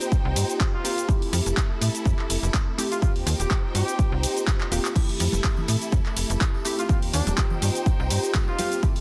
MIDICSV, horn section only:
0, 0, Header, 1, 2, 480
1, 0, Start_track
1, 0, Tempo, 483871
1, 1078, Time_signature, 4, 2, 24, 8
1, 8934, End_track
2, 0, Start_track
2, 0, Title_t, "Horn section"
2, 0, Program_c, 0, 61
2, 729, Note_on_c, 0, 65, 95
2, 1078, Note_off_c, 0, 65, 0
2, 2891, Note_on_c, 0, 65, 90
2, 2960, Note_off_c, 0, 65, 0
2, 3000, Note_on_c, 0, 65, 77
2, 3083, Note_off_c, 0, 65, 0
2, 3367, Note_on_c, 0, 67, 94
2, 3534, Note_off_c, 0, 67, 0
2, 3721, Note_on_c, 0, 67, 95
2, 4090, Note_off_c, 0, 67, 0
2, 6730, Note_on_c, 0, 65, 90
2, 6799, Note_off_c, 0, 65, 0
2, 6840, Note_on_c, 0, 65, 79
2, 6923, Note_off_c, 0, 65, 0
2, 7077, Note_on_c, 0, 62, 94
2, 7256, Note_off_c, 0, 62, 0
2, 8412, Note_on_c, 0, 65, 95
2, 8759, Note_off_c, 0, 65, 0
2, 8934, End_track
0, 0, End_of_file